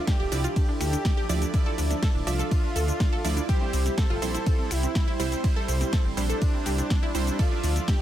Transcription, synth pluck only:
0.07 D4
0.20 G4
0.32 D4
0.44 F4
0.56 D4
0.69 D4
0.93 D4
1.05 D4
1.17 G4
1.29 D4
1.42 D4
1.54 D4
1.66 A4
1.78 D4
1.91 D4
2.02 A4
2.15 D4
2.27 D4
2.39 A4
2.51 D4
2.64 D4
2.76 A4
2.88 D4
3.00 D4
3.13 A4
3.25 D4
3.37 D4
3.49 G4
3.61 C4
3.73 C4
3.98 C4
4.10 F4
4.22 C4
4.34 E4
4.46 C4
4.59 C4
4.83 C4
4.95 C4
5.08 E4
5.20 C4
5.32 C4
5.44 C4
5.56 A4
5.68 C4
5.81 C4
5.93 A4
6.05 C4
6.17 C4
6.30 A4
6.42 C4
6.54 C4
6.66 G4
6.78 C4
6.90 C4
7.03 E4
7.15 C4
7.27 C4
7.39 A4
7.52 D4
7.64 D4
7.88 D4

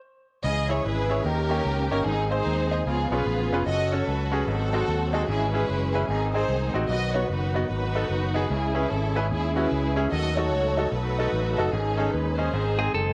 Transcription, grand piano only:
0.44 C#3
0.69 E4 G#4 C#5
1.09 E4 G#4 C#5
1.26 D#3
1.50 A#3 C#4 D#4 G4 C#5
1.91 A#3 C#4 D#4 G4 C#5
2.05 G#2
2.31 D#4 G#4 C5
2.71 D#4 G#4 C5
2.87 C#3
3.12 B3 C#4 F4 G#4 C#5
3.53 B3 C#4 F4 G#4 B4
3.93 C#4 F#4 A4
4.32 C#4 F#4 G#4
4.48 G#2
4.73 G#3 C4 D#4 F#4 A4
5.13 G#3 C4 D#4 F#4 G#4
5.29 G#2
5.54 C#4 E4 G#4
5.94 C#4 E4 B4
6.10 G#2
6.34 C4 D#4 G#4
6.74 C4 D#4 F#4
6.90 B2
7.14 B3 D#4 F#4
7.54 B3 D#4 F#4
7.95 B3 D#4 A4
8.34 B3 D#4 G#4
8.51 C#3
8.75 C#4 E4 G#4
9.15 C#4 E4 B4
9.56 C#4 E4 F#4
9.96 C#4 E4 G#4
10.13 D#3
10.37 D#4 F#4 A4
10.77 D#4 F#4 A4
11.18 D#4 F#4 A4
11.58 D#4 F#4 A4
11.73 G#2
11.97 C#4 D#4 G#4
12.38 C#4 D#4 G#4
12.53 G#2
12.78 C4 D#4 G#4

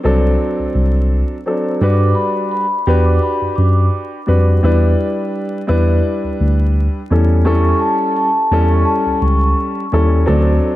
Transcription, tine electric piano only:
0.05 C2
0.59 C2
0.75 C2
1.81 G2
2.87 E2
3.42 F#2
3.58 F#2
4.29 F2
4.64 E2
5.70 E2
6.24 D2
6.40 D2
7.11 E2
8.52 E2
9.06 C#2
9.22 C#2
9.93 D#2
10.28 D2

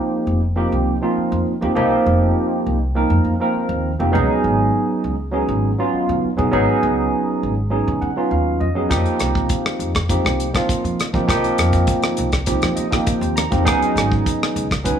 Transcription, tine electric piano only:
Already playing: F3 A#3 C4 D#4 G4
0.55 F3 A#3 C4 D#4 G4
1.02 F3 A#3 C4 D#4 F4
1.61 F3 A#3 C4 D#4 G4
1.75 F3 A#3 C4 D#4 G4
2.95 F3 A#3 C4 D#4 A#4
3.40 F3 A#3 C4 D#4 A#4
3.99 F3 A#3 C4 D#4 G4
4.11 F#3 B3 C#4 D#4 G#4
5.32 F#3 B3 C#4 D#4 G#4
5.78 F#3 B3 C#4 D#4 F4
6.37 F#3 B3 C#4 D#4 G#4
6.51 F#3 B3 C#4 D#4 G#4
7.70 F#3 B3 C#4 D#4 G#4
8.01 F#5
8.16 F#3 B3 C#4 D#4 F4
8.32 F5
8.60 D#5
8.75 F#3 B3 C#4 D#4 G#4
8.89 F3 A#3 C4 D#4 G4
10.09 F3 A#3 C4 D#4 G4
10.54 F3 A#3 C4 D#4 F4
11.13 F3 A#3 C4 D#4 G4
11.28 F3 A#3 C4 D#4 G4
12.47 F3 A#3 C4 D#4 G4
12.76 D#5
12.90 F3 A#3 C4 D#4 G4
13.06 G5
13.36 A#5
13.50 F3 A#3 C4 D#4 G4
13.64 F#3 B3 C#4 D#4 G#4
14.84 F#3 B3 C#4 D#4 B4

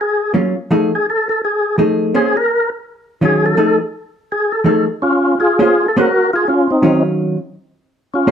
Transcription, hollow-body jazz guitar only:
0.34 F#3 A#3 C#4 F4
0.71 F3 A3 D#4 G#4
1.78 F3 A3 D#4 G#4
2.14 A#3 C#4 G#4 C5
3.21 D#3 F#3 C#4 F4
3.57 F3 A3 D#4 G#4
4.64 F3 A3 D#4 G#4
5.59 A#3 C#4 G#4 C5
5.97 A#3 C#4 G#4 C5
6.82 D#3 F#3 C#4 F4
8.27 A#3 C#4 G#4 C5

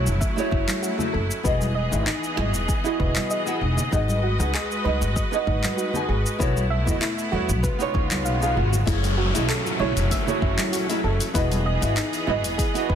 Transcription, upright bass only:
0.07 F#1
0.52 F#1
1.14 F#1
1.45 E1
1.93 G#1
2.38 G#1
2.54 E1
3.00 E1
3.61 E1
3.93 G#1
4.40 C#2
4.85 C#2
5.02 G#1
5.47 G#1
6.09 G#1
6.40 B1
6.87 E2
7.33 E2
7.49 B1
7.95 C#2
8.26 B1
8.57 G#1
8.88 F#1
9.35 B1
9.80 B1
9.96 F#1
10.42 F#1
11.04 F#1
11.35 E1
11.83 G#1
12.28 G#1
12.44 E1
12.90 E1

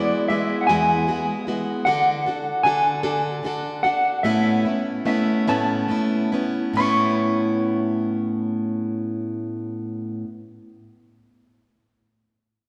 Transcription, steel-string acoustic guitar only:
Already playing: G#3 B3 E4 F#4
0.30 G#3 B3 E4 F#4
0.69 E2 E3 G#3 B3 E4 F#4
1.07 G#3 B3 E4 F#4
1.47 G#3 B3 E4 F#4
1.86 D3 D4 F#4 A4
2.26 D4 F#4 A4
2.65 D3 D4 F#4 A4
3.03 D3 D4 F#4 A4
3.43 D3 D4 F#4 A4
3.84 D4 F#4 A4
4.24 A2 A3 B3 C#4 E4
4.65 B3 C#4 E4
5.05 A3 B3 C#4 E4
5.47 A2 A3 B3 C#4 E4
5.88 A3 B3 C#4 E4
6.32 B3 C#4 E4
6.73 A2 A3 C#4
6.79 B3 E4

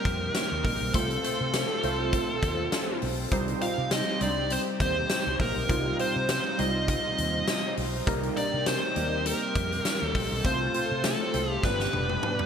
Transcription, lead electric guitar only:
Already playing: A#4
0.35 A#4
0.65 A#4
0.95 A4
3.62 F5
3.92 D#5
4.22 D5
4.52 C5
4.82 C5
5.41 A#4
6.00 C5
6.30 C5
6.60 D#5
6.90 D#5
8.38 D5
8.67 C5
9.27 A#4
10.07 A4
10.46 C5
11.05 A4
11.52 G4
11.64 B4

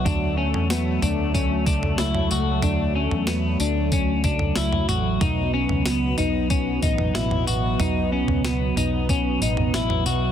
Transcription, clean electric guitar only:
0.05 D4
0.37 C#4
0.70 B3
1.03 D4
1.34 C#4
1.67 D4
1.99 E4
2.31 F#4
2.63 D4
2.95 C#4
3.28 B3
3.60 D4
3.93 C#4
4.24 D4
4.57 E4
4.89 F#4
5.21 D#4
5.54 C#4
5.86 B3
6.18 D#4
6.50 C#4
6.83 D#4
7.15 E4
7.47 F#4
7.80 D#4
8.12 C#4
8.45 B3
8.77 D#4
9.10 C#4
9.42 D#4
9.75 E4
10.06 F#4

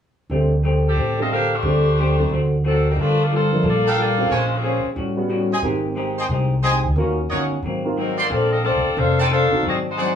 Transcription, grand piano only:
0.31 G3 A3 C4 D4
1.19 G3 A3 C4 D4
1.64 G3 A3 C4 D4
2.18 F#3 A3 C4 D4
3.52 F3 A3 A#3 D4
4.18 G#3 C4 C#4 F4
5.17 G3 B3 C#4 F#4
5.63 A#3 C4 D#4 G4
6.96 A#3 C#4 F4 F#4
7.85 A#3 C4 D#4 F4
9.51 C4 D4 D#4 F#4

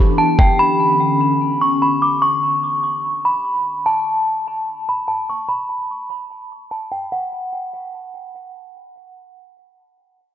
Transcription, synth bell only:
0.18 A5
0.39 G5
0.59 B5
1.61 C#6
1.82 B5
2.02 D6
2.22 C#6
3.25 B5
3.86 A5
4.89 B5
5.08 A5
5.29 C#6
5.49 B5
6.71 A5
6.92 G5
7.12 F#5

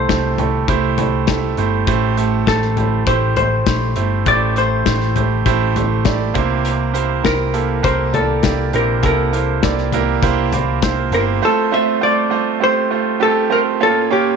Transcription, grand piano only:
Already playing: C3 A3 E4 G4 A4 C5
0.08 A3 E4 G4 C5
0.39 A3 E4 G4 A4
0.69 A3 E4 G4 C5
0.98 A3 E4 G4 C5
1.28 A3 E4 G4 A4
1.58 A3 E4 G4 C5
1.87 A2 A3 E4 G4 C5
2.17 A3 E4 G4 A4
2.47 A3 E4 G4 C5
2.78 A3 E4 G4 C5
3.07 A3 E4 G4 C5
3.37 A3 E4 G4 C5
3.66 A3 E4 G4 C5
3.96 A3 E4 G4 C5
4.26 A2 A3 E4 G4 C5
4.56 A3 E4 G4 C5
4.86 A3 E4 G4 C5
5.16 A3 E4 G4 C5
5.46 A3 E4 G4 C5
5.76 A3 E4 G4 C5
6.05 A3 E4 G4 D5
6.34 C3 A#3 E4 G4 C5
6.94 A#3 E4 G4 C5
7.23 A#3 E4 G4 C5
7.53 A#3 E4 G4 A4
7.83 A#3 E4 G4 A#4
8.13 A#3 E4 G4 D5
8.43 A#3 E4 G4 D5
8.74 C3 A#3 E4 G4 C5
9.02 A#3 E4 G4 A4
9.33 A#3 E4 G4 C5
9.63 A#3 E4 G4 D5
9.94 A#3 E4 G4 A#4
10.23 A#3 E4 G4 C5
10.53 A#3 E4 G4 C5
10.83 A#3 E4 G4 C5
11.13 A#3 E4 G4 C5
11.42 A3 C4 F4 C5
11.72 A3 C4 F4 C5
12.01 A3 C4 F4 C5
12.30 A3 C4 F4 C5
12.60 A3 C4 F4 G4
12.90 A3 C4 F4 C5
13.20 A3 C4 F4 G4
13.50 A3 C4 F4 C5
13.80 A#2 A#3 C#4 F4 C#5
14.11 A#3 C#4 F4 C#5

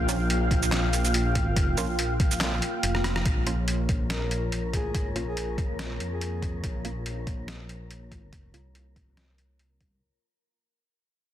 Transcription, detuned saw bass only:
Already playing: A#1
0.51 A#1
1.77 A#1
2.83 F1
3.26 A#1
3.89 A#1
4.77 A1
5.02 G#1
5.16 A#1
6.00 F2
6.64 A#1
7.27 A#1
8.54 C2
9.81 C2

